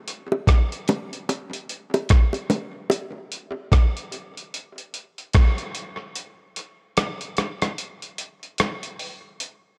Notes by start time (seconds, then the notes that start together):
0.08 closed hi-hat
0.32 high bongo
0.47 kick, cross-stick, closed hi-hat
0.72 closed hi-hat
0.88 closed hi-hat, high bongo, low bongo
1.13 closed hi-hat
1.29 closed hi-hat, high bongo
1.53 closed hi-hat
1.69 closed hi-hat
1.94 closed hi-hat, high bongo
2.09 kick, cross-stick, closed hi-hat
2.33 closed hi-hat, high bongo
2.50 closed hi-hat, low bongo
2.90 closed hi-hat, high bongo
3.32 closed hi-hat
3.72 kick, cross-stick, closed hi-hat
3.97 closed hi-hat
4.12 closed hi-hat
4.37 closed hi-hat
4.54 closed hi-hat
4.78 closed hi-hat
4.94 closed hi-hat
5.18 closed hi-hat
5.33 kick, cross-stick, closed hi-hat
5.58 closed hi-hat
5.75 closed hi-hat
6.15 closed hi-hat
6.56 closed hi-hat
6.97 cross-stick, closed hi-hat
7.21 closed hi-hat
7.37 cross-stick, closed hi-hat
7.62 cross-stick, closed hi-hat
7.78 closed hi-hat
8.02 closed hi-hat
8.18 closed hi-hat
8.43 closed hi-hat
8.58 cross-stick, closed hi-hat
8.83 closed hi-hat
8.99 open hi-hat
9.40 closed hi-hat